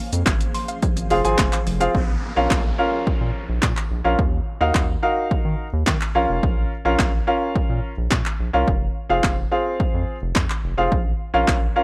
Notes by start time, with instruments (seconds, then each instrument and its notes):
Already playing: ambient pad F3 G#4 C5 F5
0.13 analog synth bass F2, closed hi-hat, shaker
0.26 analog synth bass G#1, synth arpeggio sound G#6, kick, snare, clap, closed hi-hat, shaker
0.41 closed hi-hat, shaker
0.55 synth arpeggio sound C6, open hi-hat, shaker
0.68 synth arpeggio sound F5, closed hi-hat, shaker
0.82 synth arpeggio sound F3, kick, closed hi-hat, shaker
0.97 analog synth bass G#1, synth arpeggio sound F3, closed hi-hat, shaker
1.10 analog synth bass F1, grand piano C4 F4 G#4 F5, synth arpeggio sound G#4, open hi-hat, shaker
1.24 analog synth bass G#1, grand piano C4 F4 G#4 G#5, closed hi-hat, shaker
1.38 analog synth bass F1, kick, snare, clap, closed hi-hat, shaker
1.53 synth arpeggio sound F5, clap, closed hi-hat, shaker
1.67 analog synth bass F1, synth arpeggio sound F3, open hi-hat, shaker
1.80 grand piano C4 F4 G#4 F5, synth arpeggio sound F5, closed hi-hat, shaker
1.95 analog synth bass A#1, kick, downlifter
2.36 analog synth bass A#1, grand piano C#4 F4 A#4 F5
2.50 analog synth bass A#1, kick, snare, clap
2.78 grand piano C#4 F4 A#4 F5
3.07 analog synth bass A#2, kick
3.21 analog synth bass A#2
3.49 analog synth bass A#1
3.62 analog synth bass A#2, kick, snare, clap
3.77 clap
3.91 analog synth bass A#1
4.05 analog synth bass A#1, grand piano C#4 F4 A#4 F5
4.19 analog synth bass D#2, kick
4.61 analog synth bass D#2, grand piano D#4 F#4 A#4 F5
4.74 analog synth bass D#2, kick, snare, clap
5.03 grand piano D#4 F#4 A#4 F5
5.31 analog synth bass D#3, kick
5.45 analog synth bass D#3
5.73 analog synth bass D#2
5.86 analog synth bass D#3, kick, snare, clap
6.01 clap
6.15 analog synth bass A#1, grand piano C#4 F4 A#4 F5
6.29 analog synth bass F1
6.43 analog synth bass A#1, kick
6.85 analog synth bass A#1, grand piano C#4 F4 A#4 F5
6.99 analog synth bass A#1, kick, snare, clap
7.27 grand piano C#4 F4 A#4 F5
7.56 analog synth bass A#2, kick
7.69 analog synth bass A#2
7.97 analog synth bass A#1
8.10 analog synth bass A#2, kick, snare, clap
8.26 clap
8.40 analog synth bass A#1
8.53 analog synth bass C2, grand piano C#4 F4 A#4 F5
8.68 analog synth bass F1, kick
9.09 analog synth bass F1, grand piano C4 F4 G#4 F5
9.23 analog synth bass F1, kick, snare, clap
9.51 grand piano C4 F4 G#4 F5
9.80 analog synth bass F2, kick
9.94 analog synth bass F2
10.22 analog synth bass F1
10.35 analog synth bass F2, kick, snare, clap
10.50 clap
10.64 analog synth bass F1
10.78 analog synth bass F1, grand piano C4 F4 G#4 F5
10.92 analog synth bass A#1, kick
11.34 analog synth bass A#1, grand piano C#4 F4 A#4 F5
11.47 analog synth bass A#1, kick, snare, clap
11.76 grand piano C#4 F4 A#4 F5